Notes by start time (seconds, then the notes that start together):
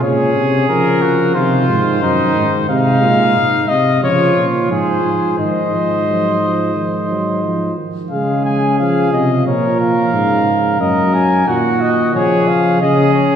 0.02 A#2 C#3 G#4 C#5
0.36 C3
0.69 C#3 F3 A#4
1.02 F#4
1.34 C3 D#3 F4 C5
1.68 G#2
2.02 F#2 D#4
2.36 G#2
2.69 C3 G#3 D#4 F5
3.02 A#2
3.36 G#2
3.69 C3 D#5
4.02 C#3 F3 F4 C#5
4.36 A#2
4.70 G#2 F3 G#4 C5
5.04 G#2
5.38 G#2 D#3 C5 D#5
5.72 F3
6.07 F#3
6.41 F3
6.75 D#3
7.10 F#3
7.43 F3
7.78 D#3
8.11 C#3 G#3 G#4 F5
8.45 G#5
8.79 F3 F5
9.13 C3 D#5
9.46 A#2 F3 A#4 C#5
9.81 F5
10.13 G#2 C#3
10.80 F#2 F#3 A#4 D#5
11.14 G#5
11.47 A#2 D#3 F#4 F#5
11.81 D#5
12.14 C#3 F3 G#4 C#5
12.48 F5
12.81 C#3 G#4 D#5
13.14 C#5